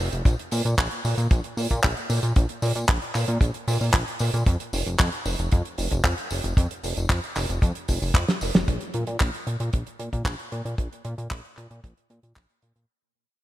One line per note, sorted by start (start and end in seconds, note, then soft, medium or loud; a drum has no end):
0.12 0.22 F1 loud
0.12 closed hi-hat medium
0.12 tambourine soft
0.25 0.35 A#1 loud
0.25 kick loud
0.25 closed hi-hat medium
0.25 tambourine soft
0.39 closed hi-hat medium
0.51 0.62 A#2 loud
0.51 open hi-hat loud
0.51 tambourine medium
0.65 0.75 A#2 loud
0.65 closed hi-hat medium
0.65 tambourine soft
0.78 0.88 A#1 loud
0.78 kick loud
0.78 clap loud
0.78 closed hi-hat medium
0.78 tambourine soft
0.91 closed hi-hat medium
1.05 1.14 A#2 medium
1.05 open hi-hat loud
1.05 tambourine medium
1.18 1.28 A#2 loud
1.18 closed hi-hat medium
1.18 tambourine soft
1.31 1.41 A#1 loud
1.31 kick loud
1.31 closed hi-hat medium
1.31 tambourine soft
1.44 closed hi-hat medium
1.57 1.67 A#2 medium
1.57 open hi-hat loud
1.57 tambourine medium
1.70 1.80 A#2 loud
1.70 kick medium
1.70 closed hi-hat medium
1.70 tambourine soft
1.83 1.94 A#1 loud
1.83 kick loud
1.83 clap loud
1.83 closed hi-hat medium
1.83 tambourine soft
1.97 closed hi-hat soft
2.10 2.20 A#2 medium
2.10 open hi-hat loud
2.10 tambourine medium
2.23 2.33 A#2 loud
2.23 closed hi-hat medium
2.23 tambourine soft
2.36 2.46 A#1 loud
2.36 kick loud
2.36 closed hi-hat medium
2.36 tambourine soft
2.49 closed hi-hat medium
2.62 2.72 A#2 loud
2.62 open hi-hat loud
2.62 tambourine medium
2.75 2.85 A#2 medium
2.75 closed hi-hat medium
2.75 tambourine soft
2.89 2.99 A#1 loud
2.89 kick loud
2.89 clap loud
2.89 closed hi-hat medium
2.89 tambourine soft
3.02 closed hi-hat soft
3.15 3.25 A#2 medium
3.15 clap soft
3.15 open hi-hat loud
3.15 tambourine medium
3.28 3.38 A#2 loud
3.28 closed hi-hat medium
3.28 tambourine soft
3.41 3.51 A#1 loud
3.41 kick loud
3.41 closed hi-hat loud
3.41 tambourine soft
3.54 closed hi-hat soft
3.68 3.78 A#2 loud
3.68 open hi-hat loud
3.68 tambourine medium
3.81 3.91 A#2 medium
3.81 open hi-hat medium
3.81 tambourine soft
3.94 4.04 A#1 medium
3.94 kick loud
3.94 clap loud
3.94 closed hi-hat loud
3.94 tambourine soft
4.08 closed hi-hat medium
4.19 4.30 A#2 loud
4.19 open hi-hat loud
4.19 tambourine medium
4.34 4.43 A#2 medium
4.34 closed hi-hat medium
4.34 tambourine soft
4.46 4.56 F2 loud
4.46 kick loud
4.46 closed hi-hat loud
4.46 tambourine soft
4.60 closed hi-hat medium
4.73 4.83 F1 loud
4.73 open hi-hat loud
4.73 tambourine medium
4.86 4.96 F1 medium
4.86 closed hi-hat medium
4.86 tambourine soft
4.99 5.09 F2 loud
4.99 kick loud
4.99 clap loud
4.99 closed hi-hat medium
5.12 closed hi-hat medium
5.26 5.35 F1 medium
5.26 open hi-hat loud
5.26 tambourine medium
5.39 5.49 F1 loud
5.39 closed hi-hat medium
5.39 tambourine soft
5.51 5.62 F2 loud
5.51 kick loud
5.51 closed hi-hat medium
5.51 tambourine soft
5.65 closed hi-hat medium
5.78 5.88 F1 medium
5.78 open hi-hat loud
5.78 tambourine medium
5.91 6.01 F1 loud
5.91 kick medium
5.91 closed hi-hat medium
5.91 tambourine soft
6.04 6.14 F2 loud
6.04 kick loud
6.04 clap loud
6.04 closed hi-hat medium
6.04 tambourine soft
6.18 closed hi-hat medium
6.31 6.41 F1 loud
6.31 open hi-hat loud
6.31 tambourine medium
6.44 6.54 F1 loud
6.44 closed hi-hat medium
6.44 tambourine soft
6.57 6.67 F2 loud
6.57 kick loud
6.57 closed hi-hat loud
6.57 tambourine soft
6.71 closed hi-hat medium
6.83 6.93 F1 loud
6.83 open hi-hat loud
6.83 tambourine medium
6.97 7.07 F1 medium
6.97 closed hi-hat medium
6.97 tambourine soft
7.09 7.20 F2 loud
7.09 kick loud
7.09 clap loud
7.09 closed hi-hat medium
7.24 closed hi-hat medium
7.36 7.46 F1 medium
7.36 clap soft
7.36 open hi-hat loud
7.36 tambourine medium
7.49 7.59 F1 loud
7.49 closed hi-hat medium
7.49 tambourine soft
7.62 7.72 F2 loud
7.62 kick loud
7.62 closed hi-hat medium
7.62 tambourine soft
7.75 closed hi-hat medium
7.88 7.99 F1 medium
7.88 kick medium
7.88 open hi-hat loud
7.88 tambourine medium
8.02 8.12 F1 loud
8.02 open hi-hat medium
8.02 tambourine soft
8.14 8.24 F2 loud
8.14 kick loud
8.14 clap loud
8.14 closed hi-hat medium
8.28 snare medium
8.28 closed hi-hat medium
8.41 8.51 F1 medium
8.41 open hi-hat loud
8.41 tambourine medium
8.54 8.65 F1 loud
8.54 snare loud
8.54 closed hi-hat medium
8.54 tambourine soft
8.68 8.78 A#1 loud
8.68 kick loud
8.68 closed hi-hat medium
8.81 closed hi-hat medium
8.94 9.04 A#2 loud
8.94 closed hi-hat medium
9.07 9.17 A#2 medium
9.07 closed hi-hat medium
9.20 9.30 A#1 loud
9.20 kick loud
9.20 clap loud
9.20 closed hi-hat medium
9.34 closed hi-hat soft
9.47 9.57 A#2 medium
9.47 closed hi-hat medium
9.60 9.70 A#2 loud
9.60 closed hi-hat medium
9.73 9.83 A#1 loud
9.73 kick loud
9.73 closed hi-hat medium
9.87 closed hi-hat medium
9.99 10.09 A#2 medium
9.99 closed hi-hat medium
10.13 10.23 A#2 loud
10.13 kick medium
10.13 closed hi-hat medium
10.25 10.35 A#1 medium
10.25 kick loud
10.25 clap loud
10.25 closed hi-hat medium
10.39 closed hi-hat medium
10.52 10.62 A#2 medium
10.52 closed hi-hat medium
10.65 10.75 A#2 loud
10.65 closed hi-hat medium
10.78 10.88 A#1 loud
10.78 kick loud
10.78 closed hi-hat medium
10.93 closed hi-hat medium
11.05 11.15 A#2 loud
11.05 closed hi-hat medium
11.18 11.28 A#2 medium
11.18 closed hi-hat medium
11.31 11.41 A#1 loud
11.31 kick loud
11.31 clap loud
11.31 closed hi-hat medium
11.45 closed hi-hat soft
11.57 11.67 A#2 medium
11.57 clap soft
11.57 closed hi-hat medium
11.71 11.80 A#2 loud
11.71 closed hi-hat medium
11.84 11.94 A#1 medium
11.84 kick loud
11.84 closed hi-hat medium
11.97 closed hi-hat soft
12.10 12.20 A#2 loud
12.10 closed hi-hat medium
12.23 12.33 A#2 medium
12.23 closed hi-hat medium
12.36 12.46 A#1 medium
12.36 kick loud
12.36 clap loud
12.36 closed hi-hat medium
12.50 closed hi-hat soft
12.62 12.72 A#2 medium
12.62 closed hi-hat medium
12.76 12.86 A#2 medium
12.76 closed hi-hat medium